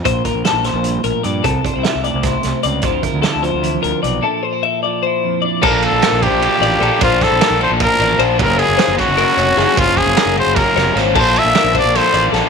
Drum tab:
CC |-------|-------|-------|-------|
RD |-------|-------|-------|-------|
HH |xxxxxxx|xxxxxxx|xxxxxxx|-------|
SD |--oo---|--o-oo-|--o----|-------|
BD |oo-----|oo--o--|oo-----|-------|

CC |x------|-------|-------|-------|
RD |-xxxxxx|xxxxxxx|xxxxxxx|xxxxxxx|
HH |-------|-------|-------|-------|
SD |--o----|-oo----|--oo--o|--o--oo|
BD |o--o---|oo--o--|o--o---|oo--o--|

CC |x------|
RD |-xxxxxx|
HH |-------|
SD |--o-o-o|
BD |o--o---|